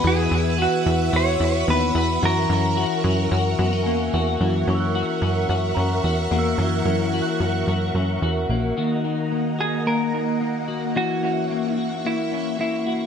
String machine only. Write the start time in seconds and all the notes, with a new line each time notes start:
Already playing: B4
0.03 E5 F#5 E6
2.22 A#4 C#6
4.40 A#4 E5 F#5 C#6
8.77 A#3 D#5 F#5 A#5
10.96 E5 C#6